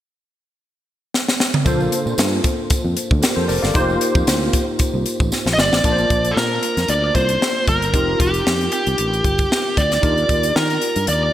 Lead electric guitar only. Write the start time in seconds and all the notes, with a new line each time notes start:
5.54 D#5
5.60 D5
6.31 A4
6.38 A#4
6.90 D5
7.16 C5
7.69 A#4
8.21 G4
8.73 G4
9.78 D5
10.56 A#4
11.09 D5